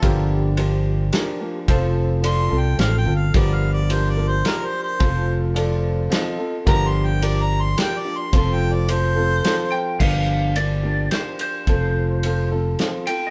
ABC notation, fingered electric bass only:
X:1
M:3/4
L:1/8
Q:1/4=108
K:Gm
V:1 name="Fingered electric bass" clef=bass
G,,,4 z2 | F,,,3 C,, A,,, G,,, | G,,,4 z2 | F,,,4 z2 |
G,,,4 z2 | F,,,4 z2 | G,,,4 z2 | F,,,4 z2 |]